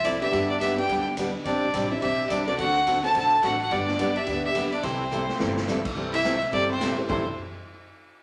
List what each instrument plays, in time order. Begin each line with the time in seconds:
Already playing: upright bass C2
0.03 steel-string acoustic guitar F3 C4 E4 A4, clarinet E4, fiddle D5, kick, hi-hat pedal, ride
0.21 upright piano B3 D4 G4 B4 D5, clarinet G4, fiddle E5, ride
0.31 upright bass G2, steel-string acoustic guitar D3 G3 B3 D4 G4, kick, ride
0.49 clarinet D4, fiddle D5
0.60 steel-string acoustic guitar D3 G3 B3 D4 G4, clarinet G4, fiddle E5, kick, hi-hat pedal, ride
0.77 upright piano B3 D4 G4 B4 D5, clarinet G4, fiddle G5, ride
0.89 upright bass D2, steel-string acoustic guitar D3 G3 B3 D4 G4, kick, ride
1.17 steel-string acoustic guitar D3 G3 B3 D4 G4, upright piano B3 D4 G4 B4 D5, kick, hi-hat pedal, ride
1.44 upright bass C2, steel-string acoustic guitar C3 G3 C4 D4 G4, clarinet D4, fiddle D5, kick, ride
1.74 upright bass A1, steel-string acoustic guitar C3 G3 C4 D4 G4, kick, hi-hat pedal, ride
1.86 clarinet F4, fiddle D5
1.91 upright piano C4 D4 G4 C5 D5, clarinet E4, fiddle E5
2.02 upright bass B1, steel-string acoustic guitar C3 G3 C4 D4 G4, clarinet G4, fiddle E5, kick, ride
2.29 upright bass C2, steel-string acoustic guitar C3 G3 C4 D4 G4, clarinet D4, fiddle D5, kick, hi-hat pedal, ride
2.46 upright piano C4 D4 F#4 A4 C5, clarinet D4, fiddle D5, ride
2.58 upright bass D2, steel-string acoustic guitar D3 A3 C4 F#4 A4, clarinet F#4, fiddle F#5, kick, ride
2.86 steel-string acoustic guitar D3 A3 C4 F#4 A4, kick, hi-hat pedal, ride
3.03 upright piano C4 D4 F#4 A4 C5, clarinet A4, fiddle A5, ride
3.15 upright bass B1, steel-string acoustic guitar D3 A3 C4 F#4 A4, clarinet A4, fiddle A5, kick, ride
3.42 upright bass A1, steel-string acoustic guitar D3 A3 C4 F#4 A4, clarinet F#4, fiddle F#5, kick, hi-hat pedal, ride
3.61 clarinet F#4, fiddle F#5
3.71 upright bass G1, steel-string acoustic guitar D3 G3 B3 D4 G4, clarinet D4, fiddle D5, kick, ride
3.88 snare
3.99 steel-string acoustic guitar D3 G3 B3 D4 G4, kick, hi-hat pedal, ride
4.16 clarinet G4, fiddle E5, ride
4.27 upright bass D2, steel-string acoustic guitar D3 G3 B3 D4 G4, upright piano B3 D4 G4 B4 D5, kick, ride
4.45 clarinet G4, fiddle E5
4.55 steel-string acoustic guitar D3 G3 B3 D4 G4, kick, hi-hat pedal, ride
4.72 clarinet D4, fiddle D5, ride
4.83 upright bass C2, steel-string acoustic guitar C3 E3 G3 C4 E4 A4, clarinet C4, fiddle C5, kick, ride
5.11 steel-string acoustic guitar C3 E3 G3 C4 E4 A4, hi-hat pedal
5.29 snare
5.39 upright bass G1, steel-string acoustic guitar C3 E3 G3 C4 E4 A4, upright piano C4 E4 G4 A4 C5, snare
5.57 snare
5.67 steel-string acoustic guitar C3 E3 G3 C4 E4 A4, snare, hi-hat pedal
5.85 kick, crash
5.95 upright bass C2, steel-string acoustic guitar C3 E3 G3 C4 E4 A4, kick
6.13 clarinet E4, fiddle E5, ride
6.24 steel-string acoustic guitar C3 E3 G3 C4 E4 A4, kick, snare, hi-hat pedal
6.42 ride
6.51 upright bass G1, steel-string acoustic guitar C3 E3 G3 C4 E4 A4, clarinet G4, fiddle D5, kick, ride
6.69 clarinet C4, fiddle C5
6.79 steel-string acoustic guitar C3 E3 G3 C4 E4 A4, kick, snare, hi-hat pedal, ride
6.98 upright piano C4 E4 G4 A4 C5
7.08 upright bass C2, steel-string acoustic guitar C3 E3 G3 C4 E4 A4, upright piano C4 E4 G4 A4, clarinet E4, fiddle C5, kick, floor tom